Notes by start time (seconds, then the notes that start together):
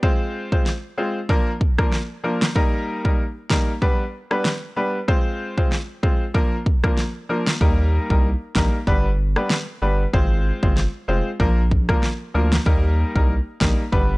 0.03 G#3 C4 F4 C5, kick
0.52 G#3 C4 F4 C5, kick
0.66 snare
0.97 G#3 C4 F4 C5
1.29 F3 A#3 D4 A#4, kick
1.61 kick
1.78 F3 A#3 D4 A#4, kick, cross-stick
1.92 snare
2.24 F3 A#3 D4 A#4
2.42 snare
2.55 G3 A#3 D#4 A#4, kick
3.04 G3 A#3 D#4 A#4, kick
3.50 G3 A#3 D#4 A#4, kick, snare
3.82 G3 B3 D4 B4, kick
4.31 G3 B3 D4 B4, cross-stick
4.45 snare
4.76 G3 B3 D4 B4
5.08 G#3 C4 F4 C5, kick
5.57 G#3 C4 F4 C5, kick
5.72 snare
6.03 G#3 C4 F4 C5, kick
6.34 F3 A#3 D4 A#4, kick
6.66 kick
6.84 F3 A#3 D4 A#4, kick, cross-stick
6.97 snare
7.29 F3 A#3 D4 A#4
7.47 snare
7.61 D#2 G3 A#3 D#4 A#4, kick
8.10 C2 G3 A#3 D#4 A#4, kick
8.56 A#1 G3 A#3 D#4 A#4, kick, snare
8.87 G1 G3 B3 D4 B4, kick
9.36 G3 B3 D4 B4, cross-stick
9.50 snare
9.82 G1 G3 B3 D4 B4
10.13 G#1 G#3 C4 F4 C5, kick
10.63 G1 G#3 C4 F4 C5, kick
10.77 snare
11.08 F1 G#3 C4 F4 C5
11.40 A#1 F3 A#3 D4 A#4, kick
11.71 kick
11.89 F3 A#3 D4 A#4, kick, cross-stick
12.03 snare
12.34 D2 F3 A#3 D4 A#4
12.53 snare
12.66 D#2 G3 A#3 D#4 A#4, kick
13.15 C2 G3 A#3 D#4 A#4, kick
13.61 A#1 G3 A#3 D#4 A#4, kick, snare
13.92 G1 G3 B3 D4 B4, kick